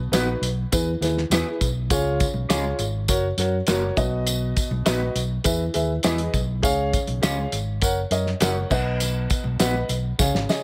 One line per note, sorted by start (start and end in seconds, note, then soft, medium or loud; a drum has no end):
0.11 0.34 A#1 medium
0.11 0.27 B3 loud
0.11 0.45 D#4 medium
0.11 0.28 D#4 medium
0.11 0.45 F#4 medium
0.11 0.28 F#4 loud
0.11 0.45 B4 loud
0.11 0.28 B4 medium
0.11 snare loud
0.11 closed hi-hat medium
0.11 tambourine medium
0.41 0.64 B1 medium
0.41 closed hi-hat medium
0.41 tambourine medium
0.72 0.94 E2 loud
0.72 1.57 E3 medium
0.72 0.88 E4 medium
0.72 0.89 G#4 medium
0.72 0.89 B4 loud
0.72 kick loud
0.72 closed hi-hat loud
0.72 tambourine loud
1.01 1.23 D#2 loud
1.01 1.18 E4 medium
1.01 1.18 G#4 medium
1.01 1.18 B4 medium
1.01 snare soft
1.01 closed hi-hat medium
1.01 tambourine medium
1.18 snare soft
1.30 1.41 E2 loud
1.30 1.46 B3 loud
1.30 1.64 E4 medium
1.30 1.46 E4 loud
1.30 1.64 G#4 medium
1.30 1.46 G#4 loud
1.30 1.64 B4 medium
1.30 1.46 B4 loud
1.30 snare loud
1.30 closed hi-hat loud
1.30 tambourine loud
1.61 1.90 B1 medium
1.61 kick medium
1.61 closed hi-hat medium
1.61 tambourine medium
1.90 2.23 C#2 loud
1.90 2.75 C#3 medium
1.90 2.23 F4 loud
1.90 2.23 G#4 loud
1.90 2.24 C#5 loud
1.90 kick loud
1.90 closed hi-hat medium
1.90 tambourine loud
1.90 muted conga soft
1.90 low conga medium
2.20 kick loud
2.20 closed hi-hat medium
2.20 tambourine medium
2.20 muted conga soft
2.34 2.45 B1 medium
2.34 high conga medium
2.49 2.71 C#2 medium
2.49 2.63 G#3 medium
2.49 2.64 C#4 medium
2.49 2.82 F4 medium
2.49 2.64 F4 medium
2.49 2.82 G#4 medium
2.49 2.64 G#4 loud
2.49 2.82 C#5 loud
2.49 snare loud
2.49 closed hi-hat loud
2.49 tambourine medium
2.64 high conga medium
2.79 3.09 G#1 medium
2.79 closed hi-hat medium
2.79 tambourine medium
2.79 muted conga soft
2.79 low conga medium
3.08 3.31 F#1 loud
3.08 3.25 F#4 medium
3.08 3.25 A#4 medium
3.08 3.25 C#5 loud
3.08 kick medium
3.08 closed hi-hat loud
3.08 tambourine loud
3.08 muted conga soft
3.37 3.60 F#2 loud
3.37 3.55 F#4 medium
3.37 3.55 A#4 medium
3.37 3.55 C#5 medium
3.37 snare soft
3.37 closed hi-hat medium
3.37 tambourine medium
3.37 muted conga soft
3.67 3.89 F#1 medium
3.67 3.82 A#3 medium
3.67 3.82 C#4 medium
3.67 3.95 F#4 medium
3.67 3.82 F#4 loud
3.67 3.97 A#4 medium
3.67 3.82 A#4 medium
3.67 3.98 C#5 loud
3.67 snare loud
3.67 closed hi-hat loud
3.67 tambourine loud
3.67 muted conga soft
3.67 high conga medium
3.82 high conga medium
3.97 4.52 B1 medium
3.97 4.82 B2 medium
3.97 4.68 F#4 medium
3.97 4.68 B4 medium
3.97 4.68 D#5 loud
3.97 kick loud
3.97 closed hi-hat medium
3.97 tambourine medium
3.97 muted conga soft
3.97 high conga medium
3.97 low conga medium
4.27 closed hi-hat medium
4.27 tambourine loud
4.27 muted conga soft
4.27 low conga medium
4.57 kick loud
4.57 closed hi-hat medium
4.57 tambourine medium
4.57 muted conga soft
4.71 4.82 B1 loud
4.71 high conga medium
4.85 5.08 A#1 medium
4.85 5.00 B3 medium
4.85 5.00 D#4 loud
4.85 5.18 F#4 medium
4.85 5.01 F#4 medium
4.85 5.19 B4 medium
4.85 5.01 B4 medium
4.85 5.19 D#5 medium
4.85 snare loud
4.85 closed hi-hat loud
4.85 tambourine loud
5.01 high conga medium
5.15 5.37 B1 medium
5.15 closed hi-hat medium
5.15 tambourine medium
5.15 muted conga soft
5.15 low conga medium
5.44 5.67 E2 loud
5.44 6.29 E3 medium
5.44 5.61 G#4 medium
5.44 5.61 B4 medium
5.44 5.62 E5 loud
5.44 kick loud
5.44 closed hi-hat loud
5.44 tambourine loud
5.44 muted conga soft
5.74 5.97 D#2 medium
5.74 5.91 G#4 medium
5.74 5.91 B4 medium
5.74 5.91 E5 loud
5.74 closed hi-hat medium
5.74 tambourine medium
5.74 muted conga soft
6.03 6.26 E2 loud
6.03 6.18 B3 medium
6.03 6.19 E4 medium
6.03 6.37 G#4 loud
6.03 6.19 G#4 medium
6.03 6.37 B4 medium
6.03 6.19 B4 medium
6.03 6.37 D#5 loud
6.03 snare loud
6.03 closed hi-hat medium
6.03 tambourine medium
6.03 muted conga soft
6.03 high conga medium
6.18 closed hi-hat medium
6.18 high conga medium
6.33 6.63 B1 loud
6.33 kick medium
6.33 closed hi-hat medium
6.33 tambourine medium
6.33 muted conga soft
6.33 high conga soft
6.33 low conga medium
6.62 6.96 C#2 loud
6.62 7.48 C#3 medium
6.62 6.96 G#4 loud
6.62 6.96 C#5 loud
6.62 6.96 F5 loud
6.62 kick loud
6.62 closed hi-hat medium
6.62 tambourine loud
6.62 muted conga soft
6.62 low conga medium
6.93 kick medium
6.93 closed hi-hat medium
6.93 tambourine medium
7.07 7.19 B1 loud
7.07 closed hi-hat soft
7.07 high conga medium
7.22 7.45 C#2 loud
7.22 7.37 C#4 loud
7.22 7.37 F4 medium
7.22 7.55 G#4 medium
7.22 7.37 G#4 medium
7.22 7.55 C#5 medium
7.22 7.37 C#5 loud
7.22 7.55 F5 loud
7.22 snare loud
7.22 closed hi-hat medium
7.22 tambourine loud
7.39 high conga medium
7.52 7.82 G#1 medium
7.52 closed hi-hat medium
7.52 tambourine medium
7.52 muted conga soft
7.52 low conga medium
7.82 8.04 F#1 loud
7.82 7.98 A#4 loud
7.82 7.98 C#5 medium
7.82 7.99 F#5 loud
7.82 kick loud
7.82 closed hi-hat medium
7.82 tambourine loud
7.82 muted conga soft
8.11 8.33 F#2 loud
8.11 8.28 A#4 medium
8.11 8.28 C#5 medium
8.11 8.28 D#5 medium
8.11 closed hi-hat medium
8.11 tambourine medium
8.11 muted conga soft
8.26 snare soft
8.40 8.63 F#1 loud
8.40 8.55 C#4 loud
8.40 8.55 F#4 medium
8.40 8.70 A#4 medium
8.40 8.55 A#4 loud
8.40 8.71 C#5 medium
8.40 8.56 C#5 loud
8.40 8.70 F#5 loud
8.40 snare loud
8.40 closed hi-hat loud
8.40 tambourine loud
8.40 muted conga soft
8.40 high conga medium
8.55 high conga medium
8.70 9.26 B1 loud
8.70 9.55 B2 medium
8.70 9.42 B4 medium
8.70 9.42 D#5 medium
8.70 9.42 F#5 loud
8.70 kick loud
8.70 tambourine medium
8.70 crash medium
8.70 high conga medium
8.70 low conga medium
9.00 closed hi-hat medium
9.00 tambourine medium
9.00 low conga medium
9.30 kick loud
9.30 closed hi-hat medium
9.30 tambourine medium
9.44 9.56 B1 medium
9.44 high conga medium
9.60 9.82 A#1 medium
9.60 9.74 B3 medium
9.60 9.74 D#4 medium
9.60 9.74 F#4 medium
9.60 9.92 B4 medium
9.60 9.74 B4 medium
9.60 9.92 D#5 medium
9.60 9.92 F#5 medium
9.60 snare loud
9.60 closed hi-hat medium
9.60 tambourine loud
9.74 high conga medium
9.89 10.11 B1 medium
9.89 closed hi-hat medium
9.89 tambourine medium
9.89 muted conga soft
9.89 low conga medium
10.19 10.30 C#2 loud
10.19 10.63 C#3 medium
10.19 10.35 G#4 medium
10.19 10.35 C#5 medium
10.19 10.35 F5 medium
10.19 kick loud
10.19 snare medium
10.19 tambourine loud
10.19 muted conga soft
10.34 10.45 G#1 medium
10.34 snare medium
10.49 10.63 G#4 medium
10.49 10.63 C#5 medium
10.49 10.63 D#5 medium
10.49 snare medium
10.49 tambourine medium
10.49 muted conga soft